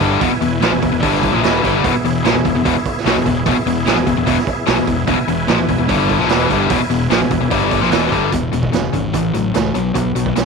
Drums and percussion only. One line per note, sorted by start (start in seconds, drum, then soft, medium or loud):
0.01 kick medium
0.01 open hi-hat medium
0.21 kick loud
0.21 open hi-hat medium
0.42 open hi-hat medium
0.62 snare loud
0.62 open hi-hat medium
0.83 kick medium
0.83 open hi-hat medium
1.03 kick loud
1.03 open hi-hat medium
1.14 snare soft
1.23 kick medium
1.23 open hi-hat medium
1.44 snare loud
1.44 open hi-hat medium
1.64 kick medium
1.64 open hi-hat medium
1.84 kick loud
1.84 open hi-hat medium
2.05 open hi-hat medium
2.25 snare medium
2.25 open hi-hat medium
2.45 kick medium
2.45 open hi-hat medium
2.66 kick loud
2.66 open hi-hat medium
2.86 kick medium
2.86 open hi-hat medium
2.98 snare soft
3.06 snare loud
3.06 open hi-hat medium
3.26 kick medium
3.26 open hi-hat medium
3.46 kick loud
3.46 open hi-hat medium
3.67 open hi-hat medium
3.87 snare medium
3.87 open hi-hat medium
4.07 kick medium
4.07 open hi-hat medium
4.27 kick loud
4.27 open hi-hat medium
4.38 snare soft
4.47 kick medium
4.47 open hi-hat medium
4.67 snare loud
4.67 open hi-hat medium
4.87 kick medium
4.87 open hi-hat medium
5.07 kick loud
5.07 open hi-hat medium
5.28 open hi-hat soft
5.48 snare loud
5.48 open hi-hat medium
5.69 kick medium
5.69 open hi-hat medium
5.89 kick loud
5.89 open hi-hat medium
6.09 kick medium
6.09 open hi-hat medium
6.21 snare soft
6.29 snare loud
6.29 open hi-hat medium
6.50 kick medium
6.50 open hi-hat medium
6.70 kick loud
6.70 open hi-hat medium
6.91 open hi-hat medium
7.10 snare loud
7.10 open hi-hat medium
7.31 kick medium
7.31 open hi-hat medium
7.51 kick loud
7.51 open hi-hat medium
7.71 kick medium
7.71 open hi-hat medium
7.83 snare soft
7.92 snare loud
7.92 open hi-hat medium
8.12 kick medium
8.12 open hi-hat soft
8.32 kick loud
8.32 closed hi-hat medium
8.53 closed hi-hat soft
8.63 kick medium
8.73 snare medium
8.73 closed hi-hat medium
8.94 kick medium
8.94 closed hi-hat medium
9.14 kick loud
9.14 closed hi-hat medium
9.34 closed hi-hat medium
9.54 snare loud
9.54 closed hi-hat medium
9.75 closed hi-hat medium
9.95 kick loud
9.95 closed hi-hat medium
10.16 closed hi-hat medium
10.26 kick medium
10.36 snare medium
10.36 closed hi-hat medium